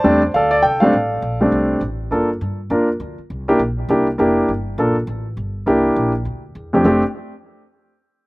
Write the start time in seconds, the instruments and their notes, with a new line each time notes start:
Already playing: grand piano C5 D5 A5
0.04 upright bass E2, grand piano G3 A3 C4 D4
0.34 upright bass D2, grand piano A4 D5 F5
0.51 grand piano D5
0.62 upright bass C2, grand piano G5
0.80 grand piano G3 A3 C4 D4 A4 D5 F5
0.93 upright bass A1
1.22 upright bass A#1
1.41 grand piano G3 A3 C4 D4
1.52 upright bass C2
1.81 upright bass A1
2.11 upright bass G1, grand piano A#3 D4 F4 A4
2.41 upright bass G2
2.70 upright bass E2, grand piano A#3 D4 F4 A#4
3.00 upright bass D2
3.18 muted upright bass stroke
3.30 upright bass C2
3.48 grand piano A#3 D4 E4 G4
3.59 upright bass A#1
3.89 upright bass C2, grand piano A#3 D4 E4 G4
4.18 upright bass F1, grand piano A#3 D4 E4 G4
4.48 upright bass G1
4.78 upright bass A#1, grand piano A#3 D4 F4 A4
5.07 upright bass A1
5.37 upright bass G1
5.66 upright bass C2, grand piano A#3 D4 E4 G4
5.96 upright bass A#1
6.25 upright bass D2
6.55 upright bass E2
6.73 grand piano F2 A3 C4 D4 G4
6.84 upright bass F1, grand piano A3 C4 D4 G4